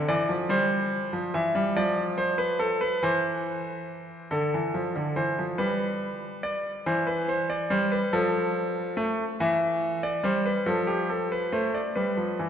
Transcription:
0, 0, Header, 1, 2, 480
1, 0, Start_track
1, 0, Tempo, 849858
1, 987, Time_signature, 6, 3, 24, 8
1, 7057, End_track
2, 0, Start_track
2, 0, Title_t, "Grand piano"
2, 0, Program_c, 0, 0
2, 48, Note_on_c, 0, 74, 83
2, 50, Note_on_c, 0, 52, 70
2, 157, Note_off_c, 0, 52, 0
2, 164, Note_on_c, 0, 53, 63
2, 191, Note_off_c, 0, 74, 0
2, 274, Note_off_c, 0, 53, 0
2, 279, Note_on_c, 0, 55, 74
2, 282, Note_on_c, 0, 72, 83
2, 623, Note_off_c, 0, 55, 0
2, 638, Note_on_c, 0, 53, 60
2, 740, Note_off_c, 0, 72, 0
2, 750, Note_off_c, 0, 53, 0
2, 757, Note_on_c, 0, 52, 66
2, 759, Note_on_c, 0, 76, 78
2, 869, Note_off_c, 0, 52, 0
2, 875, Note_on_c, 0, 55, 69
2, 904, Note_off_c, 0, 76, 0
2, 988, Note_off_c, 0, 55, 0
2, 997, Note_on_c, 0, 53, 70
2, 997, Note_on_c, 0, 74, 85
2, 1142, Note_off_c, 0, 74, 0
2, 1229, Note_on_c, 0, 72, 80
2, 1344, Note_off_c, 0, 72, 0
2, 1345, Note_on_c, 0, 71, 77
2, 1462, Note_off_c, 0, 71, 0
2, 1465, Note_on_c, 0, 69, 78
2, 1583, Note_off_c, 0, 69, 0
2, 1587, Note_on_c, 0, 71, 73
2, 1690, Note_off_c, 0, 53, 0
2, 1703, Note_off_c, 0, 71, 0
2, 1710, Note_on_c, 0, 52, 70
2, 1713, Note_on_c, 0, 72, 81
2, 2410, Note_off_c, 0, 52, 0
2, 2412, Note_off_c, 0, 72, 0
2, 2434, Note_on_c, 0, 69, 69
2, 2435, Note_on_c, 0, 50, 58
2, 2550, Note_off_c, 0, 50, 0
2, 2565, Note_on_c, 0, 52, 55
2, 2676, Note_off_c, 0, 52, 0
2, 2678, Note_on_c, 0, 53, 57
2, 2793, Note_off_c, 0, 53, 0
2, 2800, Note_on_c, 0, 50, 56
2, 2901, Note_off_c, 0, 69, 0
2, 2914, Note_off_c, 0, 50, 0
2, 2915, Note_on_c, 0, 72, 66
2, 2916, Note_on_c, 0, 52, 60
2, 3032, Note_off_c, 0, 52, 0
2, 3043, Note_on_c, 0, 53, 57
2, 3064, Note_off_c, 0, 72, 0
2, 3153, Note_on_c, 0, 71, 70
2, 3155, Note_off_c, 0, 53, 0
2, 3155, Note_on_c, 0, 55, 61
2, 3617, Note_off_c, 0, 71, 0
2, 3633, Note_on_c, 0, 74, 71
2, 3781, Note_off_c, 0, 74, 0
2, 3850, Note_off_c, 0, 55, 0
2, 3876, Note_on_c, 0, 52, 75
2, 3876, Note_on_c, 0, 72, 66
2, 3990, Note_off_c, 0, 72, 0
2, 3992, Note_on_c, 0, 71, 61
2, 4108, Note_off_c, 0, 71, 0
2, 4115, Note_on_c, 0, 72, 66
2, 4230, Note_off_c, 0, 72, 0
2, 4234, Note_on_c, 0, 74, 66
2, 4339, Note_off_c, 0, 52, 0
2, 4349, Note_off_c, 0, 74, 0
2, 4350, Note_on_c, 0, 72, 65
2, 4352, Note_on_c, 0, 55, 77
2, 4466, Note_off_c, 0, 72, 0
2, 4471, Note_on_c, 0, 71, 67
2, 4499, Note_off_c, 0, 55, 0
2, 4586, Note_off_c, 0, 71, 0
2, 4591, Note_on_c, 0, 69, 72
2, 4592, Note_on_c, 0, 53, 82
2, 5052, Note_off_c, 0, 53, 0
2, 5065, Note_on_c, 0, 57, 79
2, 5213, Note_off_c, 0, 57, 0
2, 5283, Note_off_c, 0, 69, 0
2, 5311, Note_on_c, 0, 52, 80
2, 5313, Note_on_c, 0, 76, 72
2, 5657, Note_off_c, 0, 76, 0
2, 5666, Note_on_c, 0, 74, 68
2, 5772, Note_off_c, 0, 52, 0
2, 5781, Note_off_c, 0, 74, 0
2, 5782, Note_on_c, 0, 55, 78
2, 5786, Note_on_c, 0, 72, 67
2, 5901, Note_off_c, 0, 72, 0
2, 5906, Note_on_c, 0, 71, 64
2, 5931, Note_off_c, 0, 55, 0
2, 6021, Note_off_c, 0, 71, 0
2, 6023, Note_on_c, 0, 53, 76
2, 6023, Note_on_c, 0, 69, 68
2, 6139, Note_off_c, 0, 69, 0
2, 6140, Note_on_c, 0, 67, 61
2, 6258, Note_off_c, 0, 67, 0
2, 6267, Note_on_c, 0, 69, 60
2, 6382, Note_off_c, 0, 69, 0
2, 6392, Note_on_c, 0, 71, 58
2, 6490, Note_off_c, 0, 53, 0
2, 6505, Note_off_c, 0, 71, 0
2, 6509, Note_on_c, 0, 57, 64
2, 6509, Note_on_c, 0, 72, 57
2, 6624, Note_off_c, 0, 72, 0
2, 6633, Note_on_c, 0, 74, 54
2, 6658, Note_off_c, 0, 57, 0
2, 6747, Note_off_c, 0, 74, 0
2, 6752, Note_on_c, 0, 71, 57
2, 6756, Note_on_c, 0, 55, 58
2, 6870, Note_off_c, 0, 55, 0
2, 6875, Note_on_c, 0, 53, 53
2, 6990, Note_off_c, 0, 53, 0
2, 7000, Note_on_c, 0, 52, 54
2, 7057, Note_off_c, 0, 52, 0
2, 7057, Note_off_c, 0, 71, 0
2, 7057, End_track
0, 0, End_of_file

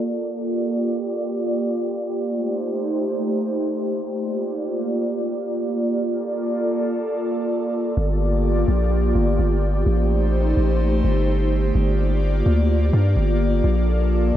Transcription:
0, 0, Header, 1, 3, 480
1, 0, Start_track
1, 0, Key_signature, -2, "minor"
1, 0, Tempo, 472441
1, 420, Time_signature, 4, 2, 24, 8
1, 14599, End_track
2, 0, Start_track
2, 0, Title_t, "Analog synth pad"
2, 0, Program_c, 0, 89
2, 0, Note_on_c, 0, 58, 82
2, 0, Note_on_c, 0, 65, 73
2, 0, Note_on_c, 0, 69, 74
2, 0, Note_on_c, 0, 74, 92
2, 381, Note_off_c, 0, 74, 0
2, 400, Note_off_c, 0, 69, 0
2, 419, Note_on_c, 0, 74, 89
2, 420, Note_on_c, 0, 67, 72
2, 2299, Note_off_c, 0, 65, 0
2, 2301, Note_off_c, 0, 58, 0
2, 2320, Note_off_c, 0, 74, 0
2, 2339, Note_on_c, 0, 72, 87
2, 2340, Note_on_c, 0, 57, 82
2, 2340, Note_on_c, 0, 63, 75
2, 4240, Note_off_c, 0, 57, 0
2, 4240, Note_off_c, 0, 63, 0
2, 4240, Note_off_c, 0, 72, 0
2, 4260, Note_on_c, 0, 58, 82
2, 4260, Note_on_c, 0, 65, 75
2, 4260, Note_on_c, 0, 74, 87
2, 6139, Note_off_c, 0, 67, 0
2, 6180, Note_on_c, 0, 69, 73
2, 8061, Note_off_c, 0, 65, 0
2, 8061, Note_off_c, 0, 74, 0
2, 8062, Note_off_c, 0, 58, 0
2, 8080, Note_off_c, 0, 69, 0
2, 8098, Note_on_c, 0, 58, 85
2, 8098, Note_on_c, 0, 65, 77
2, 8098, Note_on_c, 0, 67, 78
2, 8099, Note_on_c, 0, 74, 90
2, 10000, Note_off_c, 0, 58, 0
2, 10000, Note_off_c, 0, 65, 0
2, 10000, Note_off_c, 0, 74, 0
2, 10020, Note_on_c, 0, 57, 82
2, 10020, Note_on_c, 0, 63, 74
2, 10020, Note_on_c, 0, 72, 92
2, 11920, Note_off_c, 0, 63, 0
2, 11920, Note_off_c, 0, 72, 0
2, 11921, Note_off_c, 0, 57, 0
2, 11941, Note_on_c, 0, 58, 83
2, 11941, Note_on_c, 0, 65, 75
2, 11941, Note_on_c, 0, 74, 93
2, 13818, Note_off_c, 0, 67, 0
2, 13860, Note_on_c, 0, 69, 76
2, 14599, Note_off_c, 0, 58, 0
2, 14599, Note_off_c, 0, 65, 0
2, 14599, Note_off_c, 0, 69, 0
2, 14599, Note_off_c, 0, 74, 0
2, 14599, End_track
3, 0, Start_track
3, 0, Title_t, "808-style bass"
3, 0, Program_c, 1, 38
3, 8100, Note_on_c, 1, 31, 110
3, 8791, Note_off_c, 1, 31, 0
3, 8820, Note_on_c, 1, 34, 104
3, 9280, Note_off_c, 1, 34, 0
3, 9300, Note_on_c, 1, 31, 103
3, 9530, Note_off_c, 1, 31, 0
3, 9540, Note_on_c, 1, 31, 103
3, 10000, Note_off_c, 1, 31, 0
3, 10020, Note_on_c, 1, 33, 108
3, 10711, Note_off_c, 1, 33, 0
3, 10740, Note_on_c, 1, 33, 101
3, 11200, Note_off_c, 1, 33, 0
3, 11220, Note_on_c, 1, 31, 100
3, 11911, Note_off_c, 1, 31, 0
3, 11939, Note_on_c, 1, 31, 114
3, 12631, Note_off_c, 1, 31, 0
3, 12659, Note_on_c, 1, 38, 102
3, 13120, Note_off_c, 1, 38, 0
3, 13139, Note_on_c, 1, 43, 101
3, 13370, Note_off_c, 1, 43, 0
3, 13379, Note_on_c, 1, 31, 103
3, 13840, Note_off_c, 1, 31, 0
3, 13860, Note_on_c, 1, 34, 106
3, 14551, Note_off_c, 1, 34, 0
3, 14599, End_track
0, 0, End_of_file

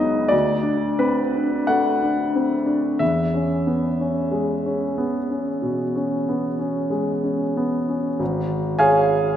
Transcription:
0, 0, Header, 1, 2, 480
1, 0, Start_track
1, 0, Tempo, 1327434
1, 1088, Time_signature, 4, 2, 24, 8
1, 1567, Tempo, 1287554
1, 3007, Tempo, 1188119
1, 3480, End_track
2, 0, Start_track
2, 0, Title_t, "Grand piano"
2, 0, Program_c, 0, 0
2, 0, Control_c, 0, 64, 127
2, 0, Note_on_c, 0, 37, 44
2, 0, Note_on_c, 0, 54, 35
2, 0, Note_on_c, 0, 59, 33
2, 0, Note_on_c, 0, 63, 32
2, 0, Note_on_c, 0, 75, 68
2, 0, Note_on_c, 0, 78, 30
2, 0, Note_on_c, 0, 83, 30
2, 0, Note_on_c, 0, 87, 30
2, 0, Note_on_c, 0, 90, 29
2, 68, Note_off_c, 0, 59, 0
2, 101, Note_off_c, 0, 37, 0
2, 101, Note_off_c, 0, 78, 0
2, 103, Note_on_c, 0, 74, 60
2, 106, Note_off_c, 0, 83, 0
2, 110, Note_on_c, 0, 38, 41
2, 112, Note_off_c, 0, 63, 0
2, 112, Note_off_c, 0, 87, 0
2, 113, Note_off_c, 0, 75, 0
2, 117, Note_off_c, 0, 90, 0
2, 125, Control_c, 0, 64, 0
2, 129, Note_off_c, 0, 54, 0
2, 190, Control_c, 0, 64, 127
2, 227, Note_on_c, 0, 62, 32
2, 353, Note_off_c, 0, 74, 0
2, 357, Note_on_c, 0, 71, 53
2, 358, Note_on_c, 0, 60, 29
2, 434, Note_off_c, 0, 62, 0
2, 488, Note_on_c, 0, 62, 31
2, 563, Note_off_c, 0, 60, 0
2, 604, Note_on_c, 0, 78, 61
2, 607, Note_on_c, 0, 57, 32
2, 613, Note_off_c, 0, 71, 0
2, 687, Note_off_c, 0, 62, 0
2, 731, Note_on_c, 0, 62, 31
2, 803, Note_off_c, 0, 57, 0
2, 851, Note_on_c, 0, 60, 27
2, 920, Note_off_c, 0, 62, 0
2, 962, Note_on_c, 0, 62, 29
2, 1039, Note_off_c, 0, 60, 0
2, 1069, Note_off_c, 0, 38, 0
2, 1082, Note_on_c, 0, 76, 52
2, 1083, Note_off_c, 0, 78, 0
2, 1084, Note_off_c, 0, 62, 0
2, 1084, Note_on_c, 0, 40, 33
2, 1093, Control_c, 0, 64, 0
2, 1160, Control_c, 0, 64, 127
2, 1208, Note_on_c, 0, 61, 27
2, 1327, Note_on_c, 0, 59, 27
2, 1401, Note_off_c, 0, 61, 0
2, 1446, Note_on_c, 0, 61, 30
2, 1520, Note_off_c, 0, 59, 0
2, 1560, Note_on_c, 0, 56, 28
2, 1639, Note_off_c, 0, 61, 0
2, 1689, Note_on_c, 0, 61, 27
2, 1757, Note_off_c, 0, 56, 0
2, 1807, Note_on_c, 0, 59, 27
2, 1881, Note_off_c, 0, 61, 0
2, 1928, Note_on_c, 0, 61, 26
2, 2000, Note_off_c, 0, 59, 0
2, 2033, Note_off_c, 0, 40, 0
2, 2048, Note_on_c, 0, 47, 28
2, 2122, Note_off_c, 0, 61, 0
2, 2171, Note_on_c, 0, 61, 27
2, 2242, Note_off_c, 0, 47, 0
2, 2295, Note_on_c, 0, 59, 26
2, 2363, Note_off_c, 0, 61, 0
2, 2409, Note_on_c, 0, 61, 29
2, 2484, Note_off_c, 0, 59, 0
2, 2525, Note_on_c, 0, 56, 29
2, 2526, Note_off_c, 0, 76, 0
2, 2600, Note_off_c, 0, 61, 0
2, 2649, Note_on_c, 0, 61, 26
2, 2720, Note_off_c, 0, 56, 0
2, 2774, Note_on_c, 0, 59, 26
2, 2845, Note_off_c, 0, 61, 0
2, 2891, Note_on_c, 0, 61, 27
2, 2964, Note_off_c, 0, 59, 0
2, 3007, Note_on_c, 0, 32, 47
2, 3008, Note_off_c, 0, 61, 0
2, 3016, Control_c, 0, 64, 0
2, 3084, Control_c, 0, 64, 127
2, 3245, Note_on_c, 0, 80, 69
2, 3248, Note_on_c, 0, 77, 51
2, 3249, Note_on_c, 0, 73, 51
2, 3251, Note_on_c, 0, 68, 51
2, 3473, Note_off_c, 0, 32, 0
2, 3480, Note_off_c, 0, 68, 0
2, 3480, Note_off_c, 0, 73, 0
2, 3480, Note_off_c, 0, 77, 0
2, 3480, Note_off_c, 0, 80, 0
2, 3480, End_track
0, 0, End_of_file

